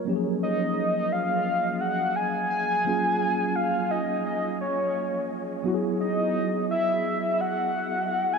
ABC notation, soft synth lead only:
X:1
M:4/4
L:1/16
Q:"Swing 16ths" 1/4=86
K:F#
V:1 name="Soft synth lead"
z2 d4 e4 f2 g2 g2- | g4 e2 d2 d2 c4 z2 | z2 d4 =e4 f4- f g |]